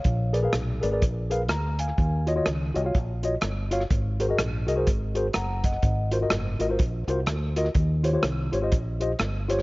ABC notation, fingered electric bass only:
X:1
M:4/4
L:1/8
Q:"Swing" 1/4=125
K:Abmix
V:1 name="Fingered electric bass" clef=bass
B,,,2 _C,, A,,, B,,,2 =D,,2 | E,,2 D,, C,, B,,,2 =G,,,2 | A,,,2 B,,, C,, A,,,2 G,,,2 | A,,,2 G,,, A,,, B,,, C,, =D,,2 |
E,,2 C,, A,,, B,,,2 =G,,,2 |]